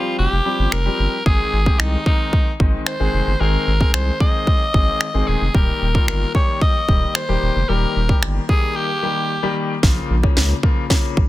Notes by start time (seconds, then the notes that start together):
Already playing: F3 G3 C4 F4 G4
0.19 F1 G4
0.32 F1
0.45 F3 G3 C4 G4
0.59 G1
0.72 F1 A#4, finger snap
0.85 F3 G3 C4 G4
0.99 G1
1.26 G#1 D#3 G#3 C4 G#4, kick
1.53 G#1
1.66 D#3 G#3 C4 G4, kick
1.80 C2 D#4, finger snap
2.06 D#3 G#3 C4 D#4 A#4, kick
2.33 kick
2.60 G#1 D#3 G#3 C4 D#4, kick
2.87 C5, finger snap
3.00 G#1 D#3 G#3 C4 G#4
3.13 F1
3.27 G1
3.40 G#1 D#3 G#3 C4 G#4 A#4
3.67 G#1
3.80 D#3 G#3 C4 G#4, kick
3.94 C2 C5, finger snap
4.20 D#3 G#3 C4 G#4 D#5, kick
4.47 kick
4.74 G#1 D#3 G#3 C4 G#4, kick
5.01 finger snap
5.14 G#1 D#3 G#3 C4 G#4
5.28 D#1 G#4
5.41 F1
5.54 D#1 D#3 G3 A#3 G4 A#4, kick
5.81 D#1
5.95 D#3 G3 A#3 F4, kick
6.08 G1 A#4, finger snap
6.35 D#3 G3 A#3 G4 C#5, kick
6.62 D#5, kick
6.88 D#1 D#3 G3 A#3 G4, kick
7.15 C5, finger snap
7.29 D#1 D#3 G3 A#3 G4
7.42 D#1
7.56 F1
7.69 D#1 D#3 G3 A#3 G4 A#4
7.96 D#1
8.09 D#3 G3 A#3 G4, kick
8.22 G1, finger snap
8.49 D#3 G3 A#3 G4 G#4, kick
8.76 G4
9.03 D#3 G3 A#3 G4
9.43 D#3 G3 A#3 G4
9.83 A#1 C#3 F3 A#3 F4, kick, snare
10.10 A#1
10.23 C#3 F3 A#3 C#4, kick
10.37 C#2, snare
10.63 C#3 F3 A#3 F4, kick
10.90 C#3 F3 A#3 C#4, kick, snare
11.17 A#1, kick